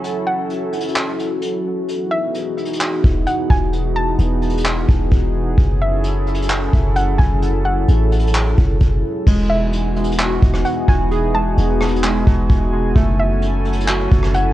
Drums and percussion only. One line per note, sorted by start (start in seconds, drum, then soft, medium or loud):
0.04 closed hi-hat medium
0.50 closed hi-hat medium
0.73 closed hi-hat medium
0.81 closed hi-hat medium
0.88 closed hi-hat medium
0.96 clap loud
0.96 closed hi-hat medium
1.19 closed hi-hat medium
1.42 closed hi-hat medium
1.88 closed hi-hat medium
2.34 closed hi-hat medium
2.58 closed hi-hat soft
2.65 closed hi-hat medium
2.73 closed hi-hat medium
2.81 clap loud
3.04 kick loud
3.04 closed hi-hat medium
3.27 closed hi-hat medium
3.50 kick loud
3.73 closed hi-hat medium
4.19 closed hi-hat medium
4.42 closed hi-hat soft
4.50 closed hi-hat medium
4.58 closed hi-hat medium
4.66 clap loud
4.66 closed hi-hat medium
4.89 kick medium
4.89 closed hi-hat medium
5.11 kick medium
5.11 closed hi-hat medium
5.58 kick loud
5.58 closed hi-hat medium
6.04 closed hi-hat medium
6.27 closed hi-hat soft
6.35 closed hi-hat medium
6.42 closed hi-hat medium
6.50 clap loud
6.73 kick medium
6.73 closed hi-hat medium
6.96 closed hi-hat medium
7.19 kick loud
7.42 closed hi-hat medium
7.88 closed hi-hat medium
8.12 closed hi-hat medium
8.19 closed hi-hat medium
8.27 closed hi-hat medium
8.35 clap loud
8.58 kick loud
8.58 closed hi-hat medium
8.81 kick medium
8.81 closed hi-hat medium
9.27 kick loud
9.27 crash loud
9.73 closed hi-hat medium
9.96 closed hi-hat soft
10.04 closed hi-hat medium
10.12 closed hi-hat medium
10.19 clap loud
10.19 closed hi-hat medium
10.42 kick loud
10.42 closed hi-hat medium
10.54 cross-stick medium
10.65 closed hi-hat medium
10.88 kick loud
11.11 closed hi-hat medium
11.57 closed hi-hat medium
11.80 cross-stick medium
11.80 closed hi-hat soft
11.80 open hi-hat medium
11.88 closed hi-hat medium
11.96 closed hi-hat medium
12.04 clap loud
12.27 kick loud
12.27 closed hi-hat medium
12.49 kick medium
12.49 closed hi-hat medium
12.96 kick loud
12.96 closed hi-hat medium
13.42 closed hi-hat medium
13.65 closed hi-hat soft
13.73 closed hi-hat medium
13.81 closed hi-hat medium
13.88 clap loud
14.11 kick loud
14.11 closed hi-hat medium
14.23 cross-stick medium
14.34 closed hi-hat medium